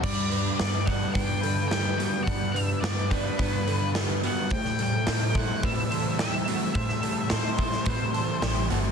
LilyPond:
<<
  \new Staff \with { instrumentName = "Lead electric guitar" } { \time 4/4 \key g \major \tempo 4 = 107 d''4 d''8 fis''8 g''4 g''4 | fis''8 e''8 d''8 b'4. r8 fis''8 | g''8 g''4 fis''8 e''4 e''4 | e''4 c''4 c''4. r8 | }
  \new Staff \with { instrumentName = "Clean electric guitar" } { \time 4/4 \key g \major d''8 b'8 b'8 d''8 b'8 a'8 g'8 fis'8 | d''8 b'8 b'8 d''8 b'8 a'8 g'8 fis'8 | c''8 a'8 a'8 c''8 b'8 a'8 g'8 fis'8 | c''8 a'8 a'8 c''8 b'8 a'8 g'8 fis'8 | }
  \new Staff \with { instrumentName = "Overdriven electric guitar" } { \time 4/4 \key g \major r8 d'8 b8 g8 d'8 b'8 b8 g8 | g8 d'8 b8 g8 d'8 b'8 b8 g8 | a,8 g8 e'8 a8 g8 c''8 e'8 a8 | a,8 g8 e'8 a8 g8 c''8 e'8 a8 | }
  \new Staff \with { instrumentName = "Overdriven electric guitar" } { \time 4/4 \key g \major g,8 g8 b8 d'8 b8 d8 g8 b8~ | b8 g8 b8 d'8 b8 d8 g8 b8 | a,8 g8 c'8 e'8 c'8 e8 g8 c'8 | a,8 g8 c'8 e'8 c'8 e8 g8 c'8 | }
  \new Staff \with { instrumentName = "Fingered electric bass" } { \clef bass \time 4/4 \key g \major g,4 g,4 g,2 | g,4 g,4 g,2 | a,4 a,4 a,2 | a,4 a,4 a,4 a,,8 g,,8 | }
  \new DrumStaff \with { instrumentName = "Drums" } \drummode { \time 4/4 <cymc bd>8 hho8 <hho sn>8 <hho bd>8 <hho bd>8 hho8 <hho sn>8 hho8 | <hho bd>8 hho8 <hho sn>8 <hho bd>8 <hho bd>8 hho8 <hho sn>8 hho8 | <hho bd>16 sn16 hho8 <hho sn>8 <hho bd>8 <hho bd>8 hho8 <hho sn>8 hho8 | <hho bd>16 sn16 hho8 <hho sn>8 <hho bd>16 sn16 <hho bd>8 hho8 <hho sn>8 hho8 | }
>>